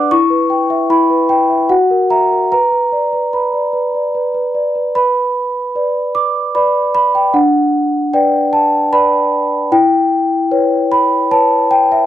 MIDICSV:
0, 0, Header, 1, 2, 480
1, 0, Start_track
1, 0, Key_signature, 2, "minor"
1, 0, Tempo, 805369
1, 65, Time_signature, 3, 2, 24, 8
1, 3426, Tempo, 796813
1, 7229, End_track
2, 0, Start_track
2, 0, Title_t, "Celesta"
2, 0, Program_c, 0, 8
2, 0, Control_c, 0, 64, 127
2, 0, Note_on_c, 0, 62, 55
2, 0, Note_on_c, 0, 71, 50
2, 0, Note_on_c, 0, 74, 42
2, 0, Note_on_c, 0, 78, 57
2, 0, Note_on_c, 0, 86, 102
2, 0, Note_on_c, 0, 90, 92
2, 64, Note_off_c, 0, 86, 0
2, 65, Note_off_c, 0, 74, 0
2, 67, Note_on_c, 0, 85, 100
2, 69, Note_on_c, 0, 64, 68
2, 76, Control_c, 0, 64, 0
2, 77, Note_off_c, 0, 62, 0
2, 80, Note_off_c, 0, 71, 0
2, 80, Note_off_c, 0, 90, 0
2, 82, Note_off_c, 0, 78, 0
2, 165, Control_c, 0, 64, 127
2, 180, Note_on_c, 0, 71, 51
2, 297, Note_on_c, 0, 79, 54
2, 370, Note_off_c, 0, 71, 0
2, 418, Note_on_c, 0, 76, 54
2, 488, Note_off_c, 0, 79, 0
2, 528, Note_off_c, 0, 64, 0
2, 536, Note_on_c, 0, 64, 56
2, 537, Note_on_c, 0, 83, 84
2, 539, Note_off_c, 0, 85, 0
2, 609, Note_off_c, 0, 76, 0
2, 656, Note_on_c, 0, 71, 50
2, 770, Note_on_c, 0, 79, 77
2, 776, Note_off_c, 0, 83, 0
2, 848, Note_off_c, 0, 71, 0
2, 892, Note_on_c, 0, 76, 44
2, 1001, Note_off_c, 0, 64, 0
2, 1009, Note_on_c, 0, 78, 73
2, 1010, Note_on_c, 0, 66, 65
2, 1013, Note_off_c, 0, 79, 0
2, 1014, Note_off_c, 0, 76, 0
2, 1027, Control_c, 0, 64, 0
2, 1133, Control_c, 0, 64, 127
2, 1135, Note_on_c, 0, 70, 48
2, 1254, Note_off_c, 0, 78, 0
2, 1254, Note_on_c, 0, 76, 50
2, 1254, Note_on_c, 0, 82, 76
2, 1329, Note_off_c, 0, 70, 0
2, 1382, Note_on_c, 0, 70, 34
2, 1449, Note_off_c, 0, 76, 0
2, 1482, Note_off_c, 0, 66, 0
2, 1494, Note_off_c, 0, 82, 0
2, 1501, Note_off_c, 0, 70, 0
2, 1501, Note_on_c, 0, 82, 76
2, 1502, Note_on_c, 0, 71, 52
2, 1509, Control_c, 0, 64, 0
2, 1605, Control_c, 0, 64, 127
2, 1615, Note_off_c, 0, 71, 0
2, 1622, Note_on_c, 0, 71, 39
2, 1742, Note_on_c, 0, 74, 43
2, 1815, Note_off_c, 0, 71, 0
2, 1864, Note_on_c, 0, 71, 37
2, 1935, Note_off_c, 0, 74, 0
2, 1981, Note_off_c, 0, 71, 0
2, 1984, Note_off_c, 0, 82, 0
2, 1986, Note_on_c, 0, 83, 52
2, 1988, Note_on_c, 0, 71, 41
2, 2108, Note_on_c, 0, 74, 38
2, 2216, Note_off_c, 0, 71, 0
2, 2223, Note_on_c, 0, 71, 41
2, 2299, Note_off_c, 0, 74, 0
2, 2352, Note_on_c, 0, 74, 34
2, 2417, Note_off_c, 0, 71, 0
2, 2468, Note_off_c, 0, 83, 0
2, 2472, Note_on_c, 0, 71, 41
2, 2542, Note_off_c, 0, 74, 0
2, 2582, Note_off_c, 0, 71, 0
2, 2589, Note_on_c, 0, 71, 39
2, 2710, Note_on_c, 0, 74, 42
2, 2781, Note_off_c, 0, 71, 0
2, 2834, Note_on_c, 0, 71, 33
2, 2901, Note_off_c, 0, 74, 0
2, 2949, Note_off_c, 0, 71, 0
2, 2952, Note_on_c, 0, 83, 76
2, 2956, Note_on_c, 0, 71, 52
2, 2957, Control_c, 0, 64, 0
2, 3043, Control_c, 0, 64, 127
2, 3415, Note_off_c, 0, 71, 0
2, 3430, Note_on_c, 0, 71, 41
2, 3431, Note_on_c, 0, 74, 41
2, 3667, Note_on_c, 0, 86, 77
2, 3668, Note_off_c, 0, 83, 0
2, 3885, Note_off_c, 0, 71, 0
2, 3886, Note_off_c, 0, 74, 0
2, 3907, Note_off_c, 0, 86, 0
2, 3908, Note_on_c, 0, 83, 76
2, 3910, Note_on_c, 0, 71, 43
2, 3910, Note_on_c, 0, 74, 50
2, 4140, Note_off_c, 0, 83, 0
2, 4147, Note_on_c, 0, 83, 82
2, 4268, Note_off_c, 0, 83, 0
2, 4269, Note_on_c, 0, 79, 63
2, 4365, Note_off_c, 0, 71, 0
2, 4365, Note_off_c, 0, 74, 0
2, 4383, Note_on_c, 0, 62, 57
2, 4383, Note_on_c, 0, 78, 72
2, 4389, Note_off_c, 0, 79, 0
2, 4398, Control_c, 0, 64, 0
2, 4514, Control_c, 0, 64, 127
2, 4851, Note_off_c, 0, 62, 0
2, 4864, Note_on_c, 0, 79, 73
2, 4865, Note_off_c, 0, 78, 0
2, 4865, Note_on_c, 0, 71, 47
2, 4865, Note_on_c, 0, 74, 49
2, 5101, Note_on_c, 0, 81, 79
2, 5105, Note_off_c, 0, 79, 0
2, 5321, Note_off_c, 0, 71, 0
2, 5321, Note_off_c, 0, 74, 0
2, 5339, Note_on_c, 0, 71, 52
2, 5341, Note_on_c, 0, 83, 90
2, 5343, Note_off_c, 0, 81, 0
2, 5344, Note_on_c, 0, 74, 50
2, 5796, Note_off_c, 0, 71, 0
2, 5798, Note_off_c, 0, 74, 0
2, 5818, Note_on_c, 0, 64, 71
2, 5819, Note_on_c, 0, 79, 97
2, 5821, Note_off_c, 0, 83, 0
2, 5834, Control_c, 0, 64, 0
2, 5939, Control_c, 0, 64, 127
2, 6285, Note_off_c, 0, 64, 0
2, 6296, Note_on_c, 0, 71, 51
2, 6298, Note_on_c, 0, 73, 56
2, 6539, Note_on_c, 0, 83, 90
2, 6540, Note_off_c, 0, 79, 0
2, 6756, Note_off_c, 0, 71, 0
2, 6757, Note_off_c, 0, 73, 0
2, 6779, Note_on_c, 0, 71, 52
2, 6779, Note_on_c, 0, 73, 52
2, 6779, Note_on_c, 0, 81, 88
2, 6781, Note_off_c, 0, 83, 0
2, 7016, Note_on_c, 0, 79, 94
2, 7022, Note_off_c, 0, 81, 0
2, 7141, Note_off_c, 0, 79, 0
2, 7143, Note_on_c, 0, 76, 70
2, 7229, Note_off_c, 0, 71, 0
2, 7229, Note_off_c, 0, 73, 0
2, 7229, Note_off_c, 0, 76, 0
2, 7229, End_track
0, 0, End_of_file